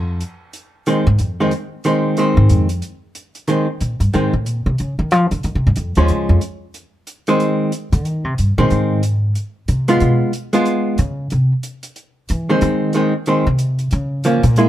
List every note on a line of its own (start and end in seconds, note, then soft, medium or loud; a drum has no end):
0.00 0.21 F2 medium
0.20 closed hi-hat soft
0.53 closed hi-hat soft
0.86 1.05 D#3 soft
0.86 1.05 G#3 medium
0.86 1.05 C4 soft
0.86 closed hi-hat soft
1.07 1.19 G#2 medium
1.19 1.50 F2 medium
1.19 closed hi-hat soft
1.40 1.51 D#3 soft
1.40 1.51 G#3 medium
1.40 1.52 C4 soft
1.51 closed hi-hat soft
1.84 2.16 D#3 soft
1.84 2.17 G#3 soft
1.84 2.18 C4 soft
1.84 closed hi-hat soft
2.17 2.66 D#3 soft
2.17 2.67 G#3 medium
2.17 2.67 C4 medium
2.17 closed hi-hat soft
2.37 2.49 G#2 medium
2.49 2.80 F2 medium
2.49 closed hi-hat soft
2.69 closed hi-hat soft
2.82 closed hi-hat soft
3.15 closed hi-hat soft
3.35 closed hi-hat soft
3.48 3.66 D#3 soft
3.48 3.67 G#3 soft
3.48 3.67 C4 medium
3.48 closed hi-hat soft
3.81 3.99 A#2 medium
3.81 closed hi-hat soft
4.00 4.13 G2 medium
4.00 closed hi-hat soft
4.13 4.33 G#2 medium
4.13 4.32 D#3 soft
4.13 4.32 G#3 soft
4.13 4.32 C4 soft
4.13 closed hi-hat soft
4.33 4.47 A2 medium
4.46 4.66 A#2 medium
4.46 closed hi-hat soft
4.66 4.78 C3 medium
4.78 4.98 C#3 medium
4.78 closed hi-hat soft
4.99 5.12 D#3 medium
5.11 5.31 F3 medium
5.11 closed hi-hat soft
5.31 5.44 D3 medium
5.31 closed hi-hat soft
5.43 5.55 D#3 medium
5.43 closed hi-hat soft
5.55 5.66 C3 medium
5.67 5.76 G#2 medium
5.76 5.96 F2 medium
5.76 closed hi-hat soft
5.95 6.09 D#2 medium
5.95 6.40 F3 medium
5.95 6.40 G#3 medium
5.95 6.40 C#4 medium
5.95 closed hi-hat soft
6.08 6.29 C#2 medium
6.08 closed hi-hat soft
6.29 6.37 F2 medium
6.41 closed hi-hat soft
6.74 closed hi-hat soft
7.07 closed hi-hat soft
7.27 7.70 D#3 medium
7.27 7.71 G#3 medium
7.27 7.71 C4 medium
7.27 closed hi-hat soft
7.40 closed hi-hat soft
7.72 closed hi-hat soft
7.92 8.06 D3 medium
7.92 closed hi-hat soft
8.05 8.24 D#3 loud
8.05 closed hi-hat soft
8.24 8.37 C3 medium
8.38 8.57 G2 medium
8.38 closed hi-hat soft
8.58 8.70 A#2 medium
8.58 9.01 D#3 soft
8.58 9.01 G#3 medium
8.58 9.01 C4 medium
8.70 9.32 G#2 medium
8.70 closed hi-hat soft
9.03 closed hi-hat medium
9.35 closed hi-hat soft
9.68 9.99 C3 medium
9.68 closed hi-hat soft
9.88 10.31 G#3 medium
9.88 10.31 B3 medium
9.88 10.32 F4 medium
9.88 closed hi-hat soft
10.00 10.21 B2 medium
10.00 closed hi-hat soft
10.33 closed hi-hat soft
10.53 10.96 G#3 medium
10.53 10.96 B3 medium
10.53 10.97 F4 medium
10.53 closed hi-hat soft
10.65 closed hi-hat soft
10.98 11.29 C#3 medium
10.98 closed hi-hat soft
11.30 11.51 C3 medium
11.30 closed hi-hat soft
11.63 closed hi-hat medium
11.83 closed hi-hat soft
11.96 closed hi-hat soft
12.29 12.60 E3 medium
12.29 closed hi-hat soft
12.49 12.92 D#3 medium
12.49 12.92 G#3 medium
12.49 12.93 C4 medium
12.61 12.74 D#3 medium
12.61 closed hi-hat soft
12.93 13.12 D#3 soft
12.93 13.13 G#3 medium
12.93 13.13 C4 medium
12.93 closed hi-hat soft
13.26 13.45 D#3 soft
13.26 13.45 G#3 soft
13.26 13.46 C4 medium
13.26 closed hi-hat soft
13.47 13.89 C3 medium
13.59 closed hi-hat medium
13.79 closed hi-hat soft
13.91 14.41 C#3 medium
13.91 closed hi-hat soft
14.24 14.43 F3 soft
14.24 14.43 A#3 soft
14.24 14.43 C#4 soft
14.24 closed hi-hat medium
14.43 14.69 A#2 medium
14.43 closed hi-hat soft
14.56 14.69 G#3 soft
14.56 14.69 A#3 soft
14.56 14.69 E4 medium
14.56 closed hi-hat soft